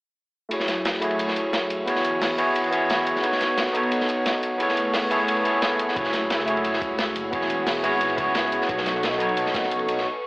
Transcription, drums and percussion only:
0.51 closed hi-hat, ride
0.60 snare
0.68 snare, closed hi-hat, ride
0.85 snare, closed hi-hat, ride
0.93 snare
1.02 closed hi-hat, ride
1.11 ride
1.19 closed hi-hat, ride
1.28 snare
1.36 closed hi-hat, ride
1.53 snare, closed hi-hat, ride
1.70 closed hi-hat, ride
1.87 closed hi-hat, ride
1.96 snare
2.04 closed hi-hat, ride
2.22 snare, closed hi-hat, open hi-hat
2.38 closed hi-hat, ride
2.56 closed hi-hat, ride
2.64 ride
2.72 closed hi-hat, ride
2.90 snare, closed hi-hat, ride
3.07 closed hi-hat, ride
3.16 snare
3.23 closed hi-hat, ride
3.32 snare
3.41 snare, closed hi-hat, ride
3.58 snare, closed hi-hat, ride
3.67 snare
3.75 closed hi-hat, ride
3.83 ride
3.92 closed hi-hat, ride
4.00 snare
4.09 closed hi-hat, ride
4.26 snare, closed hi-hat, ride
4.43 closed hi-hat, ride
4.60 closed hi-hat, ride
4.69 snare
4.77 closed hi-hat, ride
4.93 snare, closed hi-hat, open hi-hat
5.11 closed hi-hat, ride
5.28 closed hi-hat, ride
5.37 ride
5.45 closed hi-hat, ride
5.62 snare, closed hi-hat, ride
5.79 closed hi-hat, ride
5.88 snare
5.96 kick, closed hi-hat, ride
6.04 snare
6.13 snare, closed hi-hat, ride
6.30 snare, closed hi-hat, ride
6.39 snare
6.48 closed hi-hat, ride
6.57 ride
6.64 closed hi-hat, ride
6.73 snare
6.81 kick, closed hi-hat, ride
6.98 snare, closed hi-hat, ride
7.16 closed hi-hat, ride
7.33 kick, closed hi-hat, ride
7.41 snare
7.50 closed hi-hat, ride
7.67 snare, closed hi-hat, open hi-hat
7.84 closed hi-hat, ride
8.01 closed hi-hat, ride
8.10 ride
8.18 kick, closed hi-hat, ride
8.35 snare, closed hi-hat, ride
8.52 closed hi-hat, ride
8.61 snare
8.69 kick, closed hi-hat, ride
8.78 snare
8.86 snare, closed hi-hat, ride
9.03 snare, closed hi-hat, ride
9.12 snare
9.20 closed hi-hat, ride
9.29 ride
9.37 closed hi-hat, ride
9.46 snare
9.54 kick, snare, closed hi-hat, ride
9.63 snare
9.71 closed hi-hat, ride
9.79 ride
9.88 closed hi-hat, ride
9.97 snare

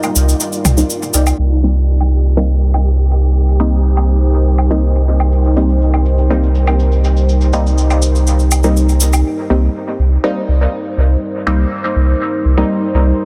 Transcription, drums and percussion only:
0.03 cabasa, low woodblock
0.16 cabasa
0.29 cabasa
0.40 cabasa
0.52 cabasa
0.65 mid tom, cabasa, low woodblock
0.77 cabasa
0.90 cabasa
1.03 cabasa
1.14 cabasa
1.26 cabasa, low woodblock
2.00 low woodblock
2.74 low woodblock
3.97 low woodblock
4.58 low woodblock
5.20 low woodblock
5.32 cabasa
5.44 cabasa
5.57 cabasa
5.69 cabasa
5.81 cabasa
5.94 cabasa, low woodblock
6.06 cabasa
6.18 cabasa
6.31 cabasa
6.43 cabasa
6.55 cabasa
6.67 cabasa, low woodblock
6.80 cabasa
6.92 cabasa
7.04 cabasa
7.17 cabasa
7.29 cabasa
7.41 cabasa
7.53 cabasa
7.67 cabasa
7.78 cabasa
7.90 cabasa, low woodblock
8.02 cabasa
8.15 cabasa
8.27 cabasa
8.39 cabasa
8.51 cabasa, low woodblock
8.63 cabasa
8.77 cabasa
8.89 cabasa
9.00 cabasa
9.13 cabasa, low woodblock

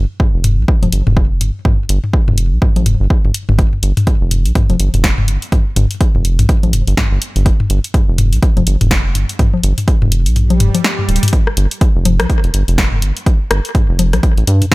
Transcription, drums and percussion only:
0.20 kick, high tom
0.44 closed hi-hat, high tom
0.68 kick
0.83 closed hi-hat, high tom, low conga
0.93 closed hi-hat
1.07 high tom
1.17 kick
1.41 closed hi-hat, high tom
1.65 kick, high tom
1.89 closed hi-hat
2.04 high tom
2.13 kick
2.28 high tom
2.38 closed hi-hat
2.62 kick, high tom
2.76 closed hi-hat, low conga
2.86 closed hi-hat, high tom
3.10 kick
3.25 high tom
3.34 closed hi-hat
3.49 high tom
3.59 kick, closed hi-hat
3.73 high tom
3.83 closed hi-hat
3.97 closed hi-hat, high tom
4.07 kick, closed hi-hat
4.31 closed hi-hat, high tom
4.46 closed hi-hat
4.55 kick, closed hi-hat, high tom
4.70 closed hi-hat, low conga
4.80 closed hi-hat
4.94 closed hi-hat, high tom
5.04 kick, snare, closed hi-hat
5.18 high tom
5.28 closed hi-hat
5.42 closed hi-hat
5.52 kick, closed hi-hat, high tom
5.76 closed hi-hat, high tom
5.91 closed hi-hat
6.01 kick, closed hi-hat
6.15 high tom
6.25 closed hi-hat
6.39 closed hi-hat, high tom
6.49 kick, closed hi-hat
6.63 closed hi-hat, low conga
6.73 closed hi-hat, high tom
6.87 closed hi-hat
6.97 kick, snare, closed hi-hat, high tom
7.22 closed hi-hat
7.36 closed hi-hat, high tom
7.46 kick, closed hi-hat
7.60 high tom
7.70 closed hi-hat
7.84 closed hi-hat
7.94 kick, closed hi-hat, high tom
8.18 closed hi-hat, high tom
8.33 closed hi-hat
8.43 kick, closed hi-hat
8.57 closed hi-hat, high tom, low conga
8.67 closed hi-hat
8.81 closed hi-hat, high tom
8.91 kick, snare, closed hi-hat
9.15 closed hi-hat, high tom
9.29 closed hi-hat
9.39 kick, closed hi-hat, high tom
9.54 low conga
9.63 closed hi-hat
9.78 closed hi-hat, high tom
9.88 kick, closed hi-hat
10.02 high tom
10.12 closed hi-hat
10.26 closed hi-hat
10.36 closed hi-hat, high tom
10.50 closed hi-hat, low conga
10.60 closed hi-hat, high tom
10.75 closed hi-hat, low conga
10.84 snare, closed hi-hat
10.99 high tom
11.09 closed hi-hat
11.16 closed hi-hat
11.23 closed hi-hat, high tom
11.28 closed hi-hat
11.33 kick
11.47 cross-stick
11.57 closed hi-hat
11.71 closed hi-hat
11.81 kick, closed hi-hat
12.05 closed hi-hat, high tom, low conga
12.20 cross-stick, closed hi-hat, low conga
12.30 kick, closed hi-hat
12.44 closed hi-hat
12.54 closed hi-hat
12.68 closed hi-hat
12.78 kick, cross-stick, snare, closed hi-hat
12.92 high tom
13.02 closed hi-hat
13.17 closed hi-hat
13.26 kick, closed hi-hat
13.51 cross-stick, closed hi-hat
13.65 closed hi-hat
13.75 kick, closed hi-hat, high tom
13.99 closed hi-hat, low conga
14.13 cross-stick, closed hi-hat, low conga
14.23 kick, closed hi-hat
14.38 closed hi-hat
14.47 closed hi-hat
14.62 closed hi-hat, high tom

